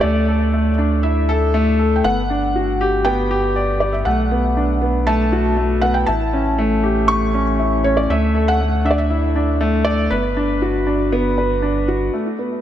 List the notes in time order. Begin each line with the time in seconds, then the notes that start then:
0.01 D2 A3 D5
0.28 A4
0.54 A3
0.78 D4
1.03 E4 E5
1.29 A4
1.54 A3
1.79 A4
1.96 G5
2.04 G1 B3 F#5
2.30 D4
2.55 F#4
2.81 G4
3.05 B3 G5
3.31 G4
3.56 D5
3.80 G4 D5
3.93 E5
4.05 B1 A3 F#5
4.31 B3
4.57 D4
4.82 B3
5.07 A3 A5
5.32 F#4
5.57 A3
5.81 B3 F#5
5.94 G5
6.07 A1 E4 A5
6.33 C#4
6.58 A3
6.83 G4
7.08 C#6
7.34 C#4
7.59 E4
7.84 C#4 C#5
7.97 D5
8.10 D2 A3 E5
8.35 A4
8.48 F#5
8.60 A3
8.85 D4 E5
8.91 D5
8.98 E5
9.10 E4
9.36 D4
9.61 A3
9.85 A4 D5
10.10 G1 B3 B4
10.37 D4
10.62 F#4
10.87 D4
11.12 B3
11.38 B4
11.62 D4
11.88 F#4
12.14 A3
12.39 B3